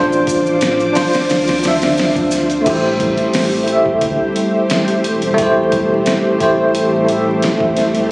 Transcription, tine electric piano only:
0.00 0.89 D4 loud
0.00 0.91 F4 medium
0.00 0.94 C5 loud
0.93 1.58 D4 medium
0.93 1.60 F4 medium
0.97 1.61 C5 medium
1.59 2.60 D4 medium
1.64 2.62 F4 medium
1.68 2.64 E5 medium
2.61 3.62 A3 medium
2.61 3.63 E4 medium
2.67 3.65 G4 medium
2.67 3.66 C5 medium
3.64 5.32 A3 medium
3.64 5.34 E4 medium
3.70 5.35 G4 medium
3.70 5.37 E5 medium
5.34 6.35 A3 loud
5.34 6.36 E4 medium
5.39 6.37 G4 medium
5.39 6.39 C5 loud
6.38 7.03 A3 medium
6.38 7.05 E4 medium
6.38 7.06 G4 medium
6.42 7.07 C5 medium
7.04 8.05 A3 medium
7.04 8.06 E4 medium
7.10 8.08 G4 medium
7.10 8.09 E5 medium
8.07 8.12 A3 medium

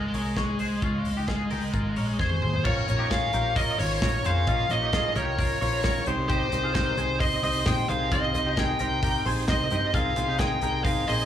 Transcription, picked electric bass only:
0.14 0.79 C2 medium
0.82 1.02 C#2 medium
1.07 1.45 C#2 medium
1.53 1.71 C#2 medium
1.73 1.93 G#1 medium
1.98 2.17 A#1 medium
2.20 2.39 F2 medium
2.44 2.63 D#2 medium
2.65 2.85 A#1 loud
2.90 3.28 A#1 loud
3.34 3.73 A#1 medium
3.80 3.99 G#1 medium
4.02 4.21 A#1 medium
4.25 4.44 F2 medium
4.48 4.67 A#1 loud
4.70 5.09 A#1 loud
5.16 5.55 C2 medium
5.62 6.01 A#1 medium
6.08 6.46 C2 loud
6.53 6.91 C2 loud
6.97 7.36 C2 medium
7.43 7.63 C2 medium
7.66 7.86 A#1 loud
7.90 8.09 C2 medium
8.11 8.31 C2 loud
8.35 8.73 C2 loud
8.81 9.19 C2 medium
9.26 9.45 A#1 medium
9.49 9.68 C2 medium
9.72 9.91 G2 medium
9.94 10.13 C2 loud
10.18 10.56 C2 loud
10.63 11.01 C2 medium
11.09 11.25 A#1 medium

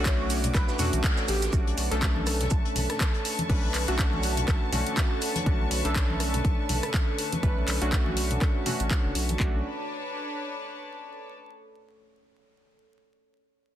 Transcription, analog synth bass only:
0.00 0.51 B1 medium
0.55 0.66 B1 medium
0.79 0.90 E2 medium
0.93 1.02 B1 loud
1.28 1.49 A1 medium
1.53 1.73 B1 loud
1.77 1.89 B1 medium
1.91 2.48 B1 medium
2.51 2.62 B1 medium
2.76 2.87 B1 medium
3.50 3.70 B1 loud
3.74 3.85 B1 medium
3.88 4.45 B1 medium
4.48 4.59 B1 medium
4.72 4.84 B1 medium
5.46 5.67 B1 loud
5.71 5.82 B1 medium
5.85 6.41 B1 medium
6.45 6.56 B1 medium
6.69 6.80 B1 medium
7.43 7.63 B1 medium
7.68 7.79 B1 medium
7.82 8.38 B1 medium
8.80 8.88 A1 loud
9.04 9.13 F#1 loud
9.15 9.36 B1 loud
9.40 9.63 B1 medium

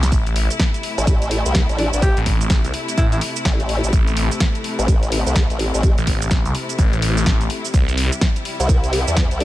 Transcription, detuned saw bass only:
0.00 0.10 C2 loud
0.12 0.48 A1 loud
2.17 2.62 A1 medium
2.64 2.72 C2 loud
2.98 3.20 A1 loud
3.93 4.29 A1 loud
5.98 6.43 A1 loud
6.45 6.53 C2 loud
6.79 7.25 A1 loud
7.26 7.49 A1 loud
7.74 8.10 C2 loud

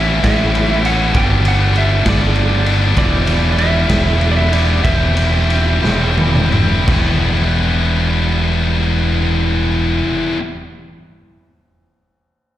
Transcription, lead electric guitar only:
0.00 0.23 E5 medium
0.24 0.81 E5 medium
0.86 1.16 F#5 medium
1.17 1.44 G5 loud
1.48 1.78 F#5 loud
1.78 2.08 E5 loud
2.09 2.72 D5 loud
2.98 3.59 D5 loud
3.59 4.31 E5 medium
4.32 4.36 D5 medium
4.37 4.53 E5 medium
4.53 4.83 D5 medium
4.84 6.13 E5 medium

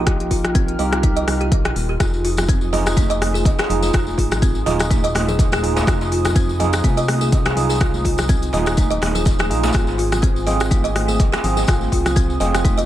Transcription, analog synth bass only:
0.00 0.77 A#1 medium
0.79 1.25 C2 loud
1.27 1.53 C2 medium
1.52 1.73 A#1 medium
1.76 1.97 D#1 medium
2.00 3.55 F1 loud
3.69 3.90 F1 loud
3.94 4.15 F1 loud
4.18 4.64 G#1 loud
4.66 5.84 D#1 loud
5.87 6.81 F1 loud
6.84 7.54 C2 loud
7.56 8.50 C2 medium
8.53 8.99 D#1 loud
9.02 9.51 D#1 medium
9.50 9.71 A#1 loud
9.74 11.30 G#1 loud
11.44 11.65 G#1 medium
11.68 11.89 G#1 loud
11.92 12.38 C2 loud
12.40 12.86 F1 loud

